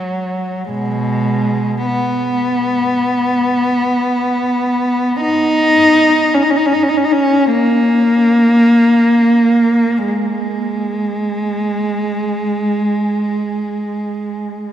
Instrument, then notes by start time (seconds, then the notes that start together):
cello
Already playing: F#3
0.71 B2 G#3
1.86 B3
5.21 D#4
6.34 C#4
6.43 D#4
6.50 C#4
6.57 D#4
6.66 C#4
6.74 D#4
6.83 C#4
6.89 D#4
6.97 C#4
7.05 D#4
7.12 C#4
7.52 A#3
10.08 G#3